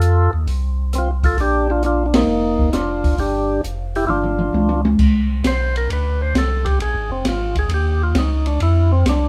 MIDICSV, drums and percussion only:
0, 0, Header, 1, 2, 480
1, 0, Start_track
1, 0, Tempo, 452148
1, 1462, Time_signature, 4, 2, 24, 8
1, 9858, End_track
2, 0, Start_track
2, 0, Title_t, "Drums"
2, 15, Note_on_c, 9, 42, 55
2, 121, Note_off_c, 9, 42, 0
2, 501, Note_on_c, 9, 36, 33
2, 503, Note_on_c, 9, 46, 47
2, 607, Note_off_c, 9, 36, 0
2, 609, Note_off_c, 9, 46, 0
2, 987, Note_on_c, 9, 42, 56
2, 988, Note_on_c, 9, 37, 62
2, 1093, Note_off_c, 9, 42, 0
2, 1095, Note_off_c, 9, 37, 0
2, 1310, Note_on_c, 9, 36, 59
2, 1311, Note_on_c, 9, 46, 42
2, 1417, Note_off_c, 9, 36, 0
2, 1417, Note_off_c, 9, 46, 0
2, 1462, Note_on_c, 9, 36, 32
2, 1462, Note_on_c, 9, 46, 46
2, 1568, Note_off_c, 9, 36, 0
2, 1568, Note_off_c, 9, 46, 0
2, 1939, Note_on_c, 9, 42, 50
2, 2045, Note_off_c, 9, 42, 0
2, 2268, Note_on_c, 9, 51, 72
2, 2269, Note_on_c, 9, 38, 81
2, 2374, Note_off_c, 9, 51, 0
2, 2375, Note_off_c, 9, 38, 0
2, 2750, Note_on_c, 9, 36, 55
2, 2857, Note_off_c, 9, 36, 0
2, 2898, Note_on_c, 9, 42, 52
2, 2899, Note_on_c, 9, 37, 64
2, 2899, Note_on_c, 9, 38, 38
2, 3004, Note_off_c, 9, 42, 0
2, 3005, Note_off_c, 9, 37, 0
2, 3005, Note_off_c, 9, 38, 0
2, 3228, Note_on_c, 9, 36, 57
2, 3229, Note_on_c, 9, 46, 43
2, 3334, Note_off_c, 9, 36, 0
2, 3335, Note_off_c, 9, 46, 0
2, 3378, Note_on_c, 9, 46, 45
2, 3380, Note_on_c, 9, 36, 32
2, 3484, Note_off_c, 9, 46, 0
2, 3487, Note_off_c, 9, 36, 0
2, 3867, Note_on_c, 9, 42, 55
2, 3973, Note_off_c, 9, 42, 0
2, 4196, Note_on_c, 9, 46, 39
2, 4302, Note_off_c, 9, 46, 0
2, 4344, Note_on_c, 9, 47, 47
2, 4450, Note_off_c, 9, 47, 0
2, 4496, Note_on_c, 9, 47, 51
2, 4602, Note_off_c, 9, 47, 0
2, 4656, Note_on_c, 9, 47, 68
2, 4762, Note_off_c, 9, 47, 0
2, 4823, Note_on_c, 9, 48, 69
2, 4929, Note_off_c, 9, 48, 0
2, 4977, Note_on_c, 9, 48, 71
2, 5083, Note_off_c, 9, 48, 0
2, 5147, Note_on_c, 9, 48, 84
2, 5254, Note_off_c, 9, 48, 0
2, 5296, Note_on_c, 9, 49, 64
2, 5299, Note_on_c, 9, 36, 63
2, 5402, Note_off_c, 9, 49, 0
2, 5405, Note_off_c, 9, 36, 0
2, 5777, Note_on_c, 9, 44, 61
2, 5777, Note_on_c, 9, 51, 64
2, 5778, Note_on_c, 9, 36, 17
2, 5778, Note_on_c, 9, 38, 65
2, 5883, Note_off_c, 9, 44, 0
2, 5883, Note_off_c, 9, 51, 0
2, 5884, Note_off_c, 9, 36, 0
2, 5885, Note_off_c, 9, 38, 0
2, 6112, Note_on_c, 9, 51, 42
2, 6218, Note_off_c, 9, 51, 0
2, 6261, Note_on_c, 9, 36, 24
2, 6266, Note_on_c, 9, 51, 53
2, 6367, Note_off_c, 9, 36, 0
2, 6372, Note_off_c, 9, 51, 0
2, 6737, Note_on_c, 9, 36, 23
2, 6742, Note_on_c, 9, 44, 55
2, 6742, Note_on_c, 9, 51, 62
2, 6743, Note_on_c, 9, 38, 69
2, 6843, Note_off_c, 9, 36, 0
2, 6849, Note_off_c, 9, 44, 0
2, 6849, Note_off_c, 9, 51, 0
2, 6850, Note_off_c, 9, 38, 0
2, 7064, Note_on_c, 9, 36, 46
2, 7066, Note_on_c, 9, 51, 45
2, 7170, Note_off_c, 9, 36, 0
2, 7172, Note_off_c, 9, 51, 0
2, 7216, Note_on_c, 9, 36, 22
2, 7221, Note_on_c, 9, 51, 56
2, 7323, Note_off_c, 9, 36, 0
2, 7327, Note_off_c, 9, 51, 0
2, 7694, Note_on_c, 9, 36, 19
2, 7694, Note_on_c, 9, 44, 54
2, 7694, Note_on_c, 9, 51, 68
2, 7696, Note_on_c, 9, 38, 59
2, 7800, Note_off_c, 9, 36, 0
2, 7801, Note_off_c, 9, 44, 0
2, 7801, Note_off_c, 9, 51, 0
2, 7802, Note_off_c, 9, 38, 0
2, 8019, Note_on_c, 9, 36, 43
2, 8020, Note_on_c, 9, 51, 46
2, 8126, Note_off_c, 9, 36, 0
2, 8126, Note_off_c, 9, 51, 0
2, 8168, Note_on_c, 9, 36, 23
2, 8168, Note_on_c, 9, 51, 56
2, 8274, Note_off_c, 9, 51, 0
2, 8275, Note_off_c, 9, 36, 0
2, 8650, Note_on_c, 9, 36, 20
2, 8650, Note_on_c, 9, 44, 52
2, 8650, Note_on_c, 9, 51, 66
2, 8651, Note_on_c, 9, 38, 66
2, 8756, Note_off_c, 9, 44, 0
2, 8756, Note_off_c, 9, 51, 0
2, 8757, Note_off_c, 9, 36, 0
2, 8758, Note_off_c, 9, 38, 0
2, 8978, Note_on_c, 9, 51, 45
2, 9084, Note_off_c, 9, 51, 0
2, 9131, Note_on_c, 9, 36, 20
2, 9132, Note_on_c, 9, 51, 56
2, 9237, Note_off_c, 9, 36, 0
2, 9238, Note_off_c, 9, 51, 0
2, 9613, Note_on_c, 9, 36, 21
2, 9616, Note_on_c, 9, 44, 52
2, 9616, Note_on_c, 9, 51, 65
2, 9617, Note_on_c, 9, 38, 64
2, 9719, Note_off_c, 9, 36, 0
2, 9722, Note_off_c, 9, 44, 0
2, 9722, Note_off_c, 9, 51, 0
2, 9723, Note_off_c, 9, 38, 0
2, 9858, End_track
0, 0, End_of_file